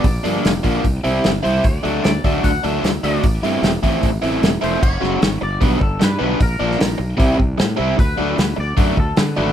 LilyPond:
<<
  \new Staff \with { instrumentName = "Clean electric guitar" } { \time 4/4 \key d \mixolydian \tempo 4 = 151 d''4. r2 c''8 | d''4 d''4 fis''8 e''4 d''8~ | d''4. r2 c''8 | cis''4. d''8 b'8 a'8 b'8 b'8 |
bes'2 r2 | b'4. d''8 b'8 a'8 b'8 b'8 | }
  \new Staff \with { instrumentName = "Overdriven electric guitar" } { \time 4/4 \key d \mixolydian r8 <d f bes d'>8 r8 <d f bes d'>8 r8 <c g c' e'>8 r8 <c g c' e'>8 | r8 <d fis a d'>8 r8 <d fis a d'>8 r8 <d fis a d'>8 r8 <d fis a d'>8 | r8 <e a c' e'>8 r8 <e a c' e'>8 r8 <e a c' e'>8 r8 <e a c' e'>8 | r8 <fis gis cis' fis'>8 r4 <d g b d'>8 r4 <d g b d'>8 |
r8 <d f bes d'>8 r4 <c g c' e'>8 r4 <c g c' e'>8 | r8 <d fis a d'>8 r4 <d fis a d'>8 r4 <d fis a d'>8 | }
  \new Staff \with { instrumentName = "Fingered electric bass" } { \clef bass \time 4/4 \key d \mixolydian bes,,8 g,8 f,,8 bes,,8 c,8 c,8 g,,8 c,8 | d,8 d,8 d,8 d,8 d,8 d,8 d,8 d,8 | a,,8 g,8 e,,8 a,,8 a,,8 a,,8 e,,8 f,,8 | fis,,8 fis,,8 gis,,8 g,,8 b,,8 g,,8 g,8 b,,8 |
bes,,8 bes,,8 bes,,8 b,,8 c,8 c,8 a,8 c,8 | d,8 d,8 d,8 d,8 fis,8 d,8 d8 gis,,8 | }
  \new DrumStaff \with { instrumentName = "Drums" } \drummode { \time 4/4 <hho bd>8 hho8 <hho sn>8 <hho bd>8 <hho bd>8 hho8 <hho sn>8 hho8 | <hho bd>8 hho8 <hho sn>8 <hho bd>8 <hho bd>8 hho8 <hho sn>8 hho8 | <hho bd>8 hho8 <hho sn>8 <hho bd>8 <hho bd>8 hho8 <hho sn>8 hho8 | <cymc bd>8 sn8 <hho sn>4 <hho bd>8 bd8 <hho sn>4 |
<hho bd>8. sn16 <hho sn>4 <hho bd>8 bd8 <hho sn>4 | <hho bd>4 <hho sn>4 <hho bd>8 bd8 <hho sn>4 | }
>>